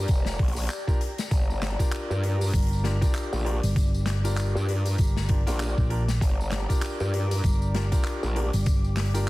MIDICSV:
0, 0, Header, 1, 6, 480
1, 0, Start_track
1, 0, Key_signature, -2, "minor"
1, 0, Tempo, 612245
1, 1029, Time_signature, 4, 2, 24, 8
1, 7289, End_track
2, 0, Start_track
2, 0, Title_t, "Ambient pad"
2, 0, Program_c, 0, 92
2, 0, Note_on_c, 0, 67, 82
2, 0, Note_on_c, 0, 74, 83
2, 0, Note_on_c, 0, 82, 99
2, 1707, Note_on_c, 0, 86, 98
2, 1733, Note_off_c, 0, 82, 0
2, 7289, Note_off_c, 0, 67, 0
2, 7289, Note_off_c, 0, 74, 0
2, 7289, Note_off_c, 0, 86, 0
2, 7289, End_track
3, 0, Start_track
3, 0, Title_t, "Grand piano"
3, 0, Program_c, 1, 0
3, 0, Note_on_c, 1, 62, 86
3, 0, Note_on_c, 1, 65, 80
3, 0, Note_on_c, 1, 67, 80
3, 0, Note_on_c, 1, 70, 98
3, 282, Note_off_c, 1, 62, 0
3, 282, Note_off_c, 1, 65, 0
3, 282, Note_off_c, 1, 67, 0
3, 282, Note_off_c, 1, 70, 0
3, 684, Note_on_c, 1, 62, 88
3, 685, Note_on_c, 1, 65, 78
3, 685, Note_on_c, 1, 67, 81
3, 685, Note_on_c, 1, 70, 97
3, 776, Note_off_c, 1, 62, 0
3, 776, Note_off_c, 1, 65, 0
3, 776, Note_off_c, 1, 67, 0
3, 776, Note_off_c, 1, 70, 0
3, 1404, Note_on_c, 1, 65, 84
3, 1404, Note_on_c, 1, 67, 82
3, 1405, Note_on_c, 1, 62, 93
3, 1405, Note_on_c, 1, 70, 100
3, 2202, Note_off_c, 1, 65, 0
3, 2203, Note_off_c, 1, 62, 0
3, 2203, Note_off_c, 1, 67, 0
3, 2203, Note_off_c, 1, 70, 0
3, 2223, Note_on_c, 1, 67, 73
3, 2224, Note_on_c, 1, 62, 81
3, 2224, Note_on_c, 1, 70, 85
3, 2225, Note_on_c, 1, 65, 70
3, 2304, Note_off_c, 1, 62, 0
3, 2304, Note_off_c, 1, 65, 0
3, 2304, Note_off_c, 1, 67, 0
3, 2304, Note_off_c, 1, 70, 0
3, 2362, Note_on_c, 1, 65, 93
3, 2362, Note_on_c, 1, 67, 91
3, 2362, Note_on_c, 1, 70, 109
3, 2363, Note_on_c, 1, 62, 106
3, 2681, Note_off_c, 1, 67, 0
3, 2681, Note_off_c, 1, 70, 0
3, 2682, Note_off_c, 1, 62, 0
3, 2682, Note_off_c, 1, 65, 0
3, 2702, Note_on_c, 1, 70, 104
3, 2704, Note_on_c, 1, 62, 92
3, 2704, Note_on_c, 1, 65, 82
3, 2704, Note_on_c, 1, 67, 87
3, 2783, Note_off_c, 1, 70, 0
3, 2784, Note_off_c, 1, 62, 0
3, 2784, Note_off_c, 1, 65, 0
3, 2784, Note_off_c, 1, 67, 0
3, 3324, Note_on_c, 1, 62, 87
3, 3324, Note_on_c, 1, 67, 82
3, 3325, Note_on_c, 1, 65, 84
3, 3325, Note_on_c, 1, 70, 97
3, 4123, Note_off_c, 1, 62, 0
3, 4123, Note_off_c, 1, 65, 0
3, 4123, Note_off_c, 1, 67, 0
3, 4123, Note_off_c, 1, 70, 0
3, 4145, Note_on_c, 1, 70, 86
3, 4146, Note_on_c, 1, 62, 82
3, 4146, Note_on_c, 1, 67, 72
3, 4148, Note_on_c, 1, 65, 73
3, 4225, Note_off_c, 1, 62, 0
3, 4225, Note_off_c, 1, 67, 0
3, 4225, Note_off_c, 1, 70, 0
3, 4226, Note_off_c, 1, 65, 0
3, 4286, Note_on_c, 1, 65, 93
3, 4286, Note_on_c, 1, 70, 116
3, 4287, Note_on_c, 1, 62, 104
3, 4287, Note_on_c, 1, 67, 91
3, 4603, Note_off_c, 1, 65, 0
3, 4603, Note_off_c, 1, 70, 0
3, 4604, Note_off_c, 1, 62, 0
3, 4604, Note_off_c, 1, 67, 0
3, 4626, Note_on_c, 1, 62, 93
3, 4626, Note_on_c, 1, 67, 86
3, 4626, Note_on_c, 1, 70, 102
3, 4628, Note_on_c, 1, 65, 88
3, 4705, Note_off_c, 1, 62, 0
3, 4705, Note_off_c, 1, 67, 0
3, 4705, Note_off_c, 1, 70, 0
3, 4706, Note_off_c, 1, 65, 0
3, 5245, Note_on_c, 1, 62, 92
3, 5245, Note_on_c, 1, 65, 83
3, 5245, Note_on_c, 1, 70, 100
3, 5246, Note_on_c, 1, 67, 86
3, 6043, Note_off_c, 1, 62, 0
3, 6043, Note_off_c, 1, 65, 0
3, 6043, Note_off_c, 1, 67, 0
3, 6043, Note_off_c, 1, 70, 0
3, 6070, Note_on_c, 1, 67, 71
3, 6071, Note_on_c, 1, 62, 80
3, 6071, Note_on_c, 1, 65, 71
3, 6071, Note_on_c, 1, 70, 86
3, 6147, Note_off_c, 1, 62, 0
3, 6147, Note_off_c, 1, 65, 0
3, 6147, Note_off_c, 1, 67, 0
3, 6147, Note_off_c, 1, 70, 0
3, 6207, Note_on_c, 1, 67, 91
3, 6208, Note_on_c, 1, 62, 100
3, 6208, Note_on_c, 1, 65, 96
3, 6208, Note_on_c, 1, 70, 115
3, 6524, Note_off_c, 1, 62, 0
3, 6524, Note_off_c, 1, 67, 0
3, 6525, Note_off_c, 1, 65, 0
3, 6525, Note_off_c, 1, 70, 0
3, 6550, Note_on_c, 1, 62, 93
3, 6550, Note_on_c, 1, 65, 84
3, 6550, Note_on_c, 1, 67, 83
3, 6551, Note_on_c, 1, 70, 104
3, 6627, Note_off_c, 1, 62, 0
3, 6627, Note_off_c, 1, 65, 0
3, 6627, Note_off_c, 1, 67, 0
3, 6627, Note_off_c, 1, 70, 0
3, 7168, Note_on_c, 1, 65, 84
3, 7168, Note_on_c, 1, 67, 81
3, 7168, Note_on_c, 1, 70, 99
3, 7170, Note_on_c, 1, 62, 92
3, 7289, Note_off_c, 1, 62, 0
3, 7289, Note_off_c, 1, 65, 0
3, 7289, Note_off_c, 1, 67, 0
3, 7289, Note_off_c, 1, 70, 0
3, 7289, End_track
4, 0, Start_track
4, 0, Title_t, "Wobble bass"
4, 0, Program_c, 2, 39
4, 68, Note_on_c, 2, 29, 98
4, 292, Note_off_c, 2, 29, 0
4, 311, Note_on_c, 2, 34, 95
4, 534, Note_off_c, 2, 34, 0
4, 1029, Note_on_c, 2, 31, 98
4, 1386, Note_off_c, 2, 31, 0
4, 1650, Note_on_c, 2, 43, 97
4, 1974, Note_off_c, 2, 43, 0
4, 2608, Note_on_c, 2, 34, 97
4, 2826, Note_off_c, 2, 34, 0
4, 3569, Note_on_c, 2, 43, 97
4, 3893, Note_off_c, 2, 43, 0
4, 4292, Note_on_c, 2, 34, 96
4, 4508, Note_off_c, 2, 34, 0
4, 4869, Note_on_c, 2, 31, 97
4, 5226, Note_off_c, 2, 31, 0
4, 5492, Note_on_c, 2, 43, 98
4, 5815, Note_off_c, 2, 43, 0
4, 6452, Note_on_c, 2, 34, 98
4, 6668, Note_off_c, 2, 34, 0
4, 7289, End_track
5, 0, Start_track
5, 0, Title_t, "Fingered electric bass"
5, 0, Program_c, 3, 33
5, 1989, Note_on_c, 3, 31, 95
5, 2346, Note_off_c, 3, 31, 0
5, 2849, Note_on_c, 3, 31, 101
5, 3546, Note_off_c, 3, 31, 0
5, 3910, Note_on_c, 3, 31, 93
5, 4266, Note_off_c, 3, 31, 0
5, 4530, Note_on_c, 3, 34, 97
5, 4854, Note_off_c, 3, 34, 0
5, 5833, Note_on_c, 3, 31, 96
5, 6188, Note_off_c, 3, 31, 0
5, 6692, Note_on_c, 3, 31, 95
5, 7289, Note_off_c, 3, 31, 0
5, 7289, End_track
6, 0, Start_track
6, 0, Title_t, "Drums"
6, 63, Note_on_c, 9, 42, 75
6, 69, Note_on_c, 9, 54, 70
6, 70, Note_on_c, 9, 36, 113
6, 141, Note_off_c, 9, 42, 0
6, 147, Note_off_c, 9, 54, 0
6, 148, Note_off_c, 9, 36, 0
6, 201, Note_on_c, 9, 38, 49
6, 211, Note_on_c, 9, 54, 45
6, 279, Note_off_c, 9, 38, 0
6, 289, Note_off_c, 9, 54, 0
6, 309, Note_on_c, 9, 36, 111
6, 309, Note_on_c, 9, 42, 34
6, 343, Note_off_c, 9, 42, 0
6, 343, Note_on_c, 9, 42, 43
6, 378, Note_off_c, 9, 42, 0
6, 378, Note_on_c, 9, 42, 48
6, 387, Note_off_c, 9, 36, 0
6, 412, Note_off_c, 9, 42, 0
6, 412, Note_on_c, 9, 42, 48
6, 442, Note_on_c, 9, 54, 84
6, 448, Note_off_c, 9, 42, 0
6, 448, Note_on_c, 9, 42, 52
6, 451, Note_off_c, 9, 42, 0
6, 451, Note_on_c, 9, 42, 68
6, 472, Note_off_c, 9, 42, 0
6, 472, Note_on_c, 9, 42, 59
6, 497, Note_off_c, 9, 42, 0
6, 497, Note_on_c, 9, 42, 62
6, 520, Note_off_c, 9, 54, 0
6, 523, Note_off_c, 9, 42, 0
6, 523, Note_on_c, 9, 42, 67
6, 548, Note_off_c, 9, 42, 0
6, 548, Note_on_c, 9, 42, 71
6, 549, Note_on_c, 9, 39, 120
6, 551, Note_on_c, 9, 54, 73
6, 627, Note_off_c, 9, 39, 0
6, 627, Note_off_c, 9, 42, 0
6, 629, Note_off_c, 9, 54, 0
6, 688, Note_on_c, 9, 36, 65
6, 694, Note_on_c, 9, 54, 43
6, 767, Note_off_c, 9, 36, 0
6, 772, Note_off_c, 9, 54, 0
6, 791, Note_on_c, 9, 42, 60
6, 870, Note_off_c, 9, 42, 0
6, 928, Note_on_c, 9, 42, 69
6, 932, Note_on_c, 9, 38, 54
6, 936, Note_on_c, 9, 54, 85
6, 1006, Note_off_c, 9, 42, 0
6, 1011, Note_off_c, 9, 38, 0
6, 1014, Note_off_c, 9, 54, 0
6, 1029, Note_on_c, 9, 36, 126
6, 1029, Note_on_c, 9, 42, 69
6, 1032, Note_on_c, 9, 54, 62
6, 1107, Note_off_c, 9, 36, 0
6, 1107, Note_off_c, 9, 42, 0
6, 1110, Note_off_c, 9, 54, 0
6, 1178, Note_on_c, 9, 54, 38
6, 1257, Note_off_c, 9, 54, 0
6, 1268, Note_on_c, 9, 42, 53
6, 1274, Note_on_c, 9, 38, 52
6, 1276, Note_on_c, 9, 39, 58
6, 1346, Note_off_c, 9, 42, 0
6, 1352, Note_off_c, 9, 38, 0
6, 1354, Note_off_c, 9, 39, 0
6, 1407, Note_on_c, 9, 36, 61
6, 1409, Note_on_c, 9, 54, 90
6, 1412, Note_on_c, 9, 42, 65
6, 1486, Note_off_c, 9, 36, 0
6, 1488, Note_off_c, 9, 54, 0
6, 1491, Note_off_c, 9, 42, 0
6, 1505, Note_on_c, 9, 42, 73
6, 1509, Note_on_c, 9, 39, 118
6, 1510, Note_on_c, 9, 54, 64
6, 1584, Note_off_c, 9, 42, 0
6, 1587, Note_off_c, 9, 39, 0
6, 1588, Note_off_c, 9, 54, 0
6, 1653, Note_on_c, 9, 54, 38
6, 1732, Note_off_c, 9, 54, 0
6, 1752, Note_on_c, 9, 42, 50
6, 1831, Note_off_c, 9, 42, 0
6, 1889, Note_on_c, 9, 42, 27
6, 1893, Note_on_c, 9, 54, 78
6, 1914, Note_off_c, 9, 42, 0
6, 1914, Note_on_c, 9, 42, 30
6, 1938, Note_off_c, 9, 42, 0
6, 1938, Note_on_c, 9, 42, 36
6, 1962, Note_off_c, 9, 42, 0
6, 1962, Note_on_c, 9, 42, 40
6, 1972, Note_off_c, 9, 54, 0
6, 1985, Note_off_c, 9, 42, 0
6, 1985, Note_on_c, 9, 42, 39
6, 1988, Note_off_c, 9, 42, 0
6, 1988, Note_on_c, 9, 36, 112
6, 1988, Note_on_c, 9, 42, 78
6, 1998, Note_on_c, 9, 54, 70
6, 2021, Note_off_c, 9, 42, 0
6, 2021, Note_on_c, 9, 42, 46
6, 2056, Note_off_c, 9, 42, 0
6, 2056, Note_on_c, 9, 42, 50
6, 2067, Note_off_c, 9, 36, 0
6, 2076, Note_off_c, 9, 54, 0
6, 2092, Note_off_c, 9, 42, 0
6, 2092, Note_on_c, 9, 42, 53
6, 2138, Note_on_c, 9, 54, 39
6, 2170, Note_off_c, 9, 42, 0
6, 2216, Note_off_c, 9, 54, 0
6, 2229, Note_on_c, 9, 38, 51
6, 2232, Note_on_c, 9, 42, 72
6, 2307, Note_off_c, 9, 38, 0
6, 2310, Note_off_c, 9, 42, 0
6, 2368, Note_on_c, 9, 36, 102
6, 2369, Note_on_c, 9, 42, 68
6, 2375, Note_on_c, 9, 54, 76
6, 2447, Note_off_c, 9, 36, 0
6, 2448, Note_off_c, 9, 42, 0
6, 2453, Note_off_c, 9, 54, 0
6, 2467, Note_on_c, 9, 39, 123
6, 2467, Note_on_c, 9, 42, 73
6, 2470, Note_on_c, 9, 54, 68
6, 2546, Note_off_c, 9, 39, 0
6, 2546, Note_off_c, 9, 42, 0
6, 2548, Note_off_c, 9, 54, 0
6, 2609, Note_on_c, 9, 54, 43
6, 2687, Note_off_c, 9, 54, 0
6, 2715, Note_on_c, 9, 42, 52
6, 2793, Note_off_c, 9, 42, 0
6, 2850, Note_on_c, 9, 42, 68
6, 2856, Note_on_c, 9, 54, 81
6, 2928, Note_off_c, 9, 42, 0
6, 2934, Note_off_c, 9, 54, 0
6, 2949, Note_on_c, 9, 36, 118
6, 2950, Note_on_c, 9, 42, 78
6, 2963, Note_on_c, 9, 54, 57
6, 3027, Note_off_c, 9, 36, 0
6, 3028, Note_off_c, 9, 42, 0
6, 3041, Note_off_c, 9, 54, 0
6, 3092, Note_on_c, 9, 54, 41
6, 3171, Note_off_c, 9, 54, 0
6, 3182, Note_on_c, 9, 38, 54
6, 3186, Note_on_c, 9, 39, 57
6, 3189, Note_on_c, 9, 42, 58
6, 3260, Note_off_c, 9, 38, 0
6, 3265, Note_off_c, 9, 39, 0
6, 3268, Note_off_c, 9, 42, 0
6, 3331, Note_on_c, 9, 42, 61
6, 3332, Note_on_c, 9, 54, 81
6, 3409, Note_off_c, 9, 42, 0
6, 3411, Note_off_c, 9, 54, 0
6, 3429, Note_on_c, 9, 42, 80
6, 3430, Note_on_c, 9, 39, 111
6, 3433, Note_on_c, 9, 54, 68
6, 3507, Note_off_c, 9, 42, 0
6, 3508, Note_off_c, 9, 39, 0
6, 3512, Note_off_c, 9, 54, 0
6, 3579, Note_on_c, 9, 54, 41
6, 3657, Note_off_c, 9, 54, 0
6, 3674, Note_on_c, 9, 42, 50
6, 3752, Note_off_c, 9, 42, 0
6, 3806, Note_on_c, 9, 42, 65
6, 3813, Note_on_c, 9, 54, 69
6, 3885, Note_off_c, 9, 42, 0
6, 3891, Note_off_c, 9, 54, 0
6, 3907, Note_on_c, 9, 42, 74
6, 3910, Note_on_c, 9, 36, 107
6, 3912, Note_on_c, 9, 54, 62
6, 3985, Note_off_c, 9, 42, 0
6, 3989, Note_off_c, 9, 36, 0
6, 3991, Note_off_c, 9, 54, 0
6, 4050, Note_on_c, 9, 38, 49
6, 4056, Note_on_c, 9, 54, 39
6, 4128, Note_off_c, 9, 38, 0
6, 4134, Note_off_c, 9, 54, 0
6, 4145, Note_on_c, 9, 42, 75
6, 4151, Note_on_c, 9, 36, 110
6, 4223, Note_off_c, 9, 42, 0
6, 4229, Note_off_c, 9, 36, 0
6, 4290, Note_on_c, 9, 42, 67
6, 4297, Note_on_c, 9, 54, 65
6, 4369, Note_off_c, 9, 42, 0
6, 4376, Note_off_c, 9, 54, 0
6, 4392, Note_on_c, 9, 39, 114
6, 4397, Note_on_c, 9, 54, 71
6, 4470, Note_off_c, 9, 39, 0
6, 4476, Note_off_c, 9, 54, 0
6, 4530, Note_on_c, 9, 36, 62
6, 4532, Note_on_c, 9, 54, 37
6, 4608, Note_off_c, 9, 36, 0
6, 4610, Note_off_c, 9, 54, 0
6, 4629, Note_on_c, 9, 42, 49
6, 4708, Note_off_c, 9, 42, 0
6, 4770, Note_on_c, 9, 38, 53
6, 4771, Note_on_c, 9, 42, 60
6, 4771, Note_on_c, 9, 54, 76
6, 4848, Note_off_c, 9, 38, 0
6, 4849, Note_off_c, 9, 42, 0
6, 4850, Note_off_c, 9, 54, 0
6, 4871, Note_on_c, 9, 36, 119
6, 4877, Note_on_c, 9, 42, 81
6, 4878, Note_on_c, 9, 54, 63
6, 4949, Note_off_c, 9, 36, 0
6, 4955, Note_off_c, 9, 42, 0
6, 4957, Note_off_c, 9, 54, 0
6, 5022, Note_on_c, 9, 54, 36
6, 5100, Note_off_c, 9, 54, 0
6, 5106, Note_on_c, 9, 42, 54
6, 5108, Note_on_c, 9, 39, 62
6, 5110, Note_on_c, 9, 38, 53
6, 5185, Note_off_c, 9, 42, 0
6, 5186, Note_off_c, 9, 39, 0
6, 5188, Note_off_c, 9, 38, 0
6, 5251, Note_on_c, 9, 36, 58
6, 5252, Note_on_c, 9, 42, 64
6, 5258, Note_on_c, 9, 54, 82
6, 5330, Note_off_c, 9, 36, 0
6, 5330, Note_off_c, 9, 42, 0
6, 5336, Note_off_c, 9, 54, 0
6, 5349, Note_on_c, 9, 39, 112
6, 5350, Note_on_c, 9, 42, 72
6, 5355, Note_on_c, 9, 54, 68
6, 5428, Note_off_c, 9, 39, 0
6, 5428, Note_off_c, 9, 42, 0
6, 5434, Note_off_c, 9, 54, 0
6, 5488, Note_on_c, 9, 54, 39
6, 5567, Note_off_c, 9, 54, 0
6, 5595, Note_on_c, 9, 42, 51
6, 5674, Note_off_c, 9, 42, 0
6, 5733, Note_on_c, 9, 54, 68
6, 5734, Note_on_c, 9, 42, 72
6, 5811, Note_off_c, 9, 54, 0
6, 5812, Note_off_c, 9, 42, 0
6, 5832, Note_on_c, 9, 36, 104
6, 5832, Note_on_c, 9, 42, 71
6, 5835, Note_on_c, 9, 54, 58
6, 5910, Note_off_c, 9, 42, 0
6, 5911, Note_off_c, 9, 36, 0
6, 5914, Note_off_c, 9, 54, 0
6, 5973, Note_on_c, 9, 54, 36
6, 6051, Note_off_c, 9, 54, 0
6, 6073, Note_on_c, 9, 42, 72
6, 6074, Note_on_c, 9, 38, 54
6, 6151, Note_off_c, 9, 42, 0
6, 6153, Note_off_c, 9, 38, 0
6, 6209, Note_on_c, 9, 42, 65
6, 6212, Note_on_c, 9, 36, 94
6, 6215, Note_on_c, 9, 54, 73
6, 6288, Note_off_c, 9, 42, 0
6, 6291, Note_off_c, 9, 36, 0
6, 6293, Note_off_c, 9, 54, 0
6, 6308, Note_on_c, 9, 39, 101
6, 6316, Note_on_c, 9, 42, 74
6, 6317, Note_on_c, 9, 54, 65
6, 6387, Note_off_c, 9, 39, 0
6, 6395, Note_off_c, 9, 42, 0
6, 6395, Note_off_c, 9, 54, 0
6, 6453, Note_on_c, 9, 54, 36
6, 6531, Note_off_c, 9, 54, 0
6, 6555, Note_on_c, 9, 42, 54
6, 6633, Note_off_c, 9, 42, 0
6, 6690, Note_on_c, 9, 42, 63
6, 6694, Note_on_c, 9, 54, 70
6, 6769, Note_off_c, 9, 42, 0
6, 6772, Note_off_c, 9, 54, 0
6, 6789, Note_on_c, 9, 42, 75
6, 6790, Note_on_c, 9, 54, 66
6, 6793, Note_on_c, 9, 36, 122
6, 6868, Note_off_c, 9, 42, 0
6, 6869, Note_off_c, 9, 54, 0
6, 6872, Note_off_c, 9, 36, 0
6, 6933, Note_on_c, 9, 54, 36
6, 7012, Note_off_c, 9, 54, 0
6, 7029, Note_on_c, 9, 42, 49
6, 7031, Note_on_c, 9, 38, 57
6, 7031, Note_on_c, 9, 39, 58
6, 7064, Note_off_c, 9, 42, 0
6, 7064, Note_on_c, 9, 42, 41
6, 7098, Note_off_c, 9, 42, 0
6, 7098, Note_on_c, 9, 42, 33
6, 7109, Note_off_c, 9, 38, 0
6, 7110, Note_off_c, 9, 39, 0
6, 7135, Note_off_c, 9, 42, 0
6, 7135, Note_on_c, 9, 42, 27
6, 7170, Note_on_c, 9, 54, 74
6, 7171, Note_off_c, 9, 42, 0
6, 7171, Note_on_c, 9, 42, 65
6, 7194, Note_off_c, 9, 42, 0
6, 7194, Note_on_c, 9, 42, 19
6, 7219, Note_off_c, 9, 42, 0
6, 7219, Note_on_c, 9, 42, 15
6, 7245, Note_off_c, 9, 42, 0
6, 7245, Note_on_c, 9, 42, 13
6, 7249, Note_off_c, 9, 54, 0
6, 7289, Note_off_c, 9, 42, 0
6, 7289, End_track
0, 0, End_of_file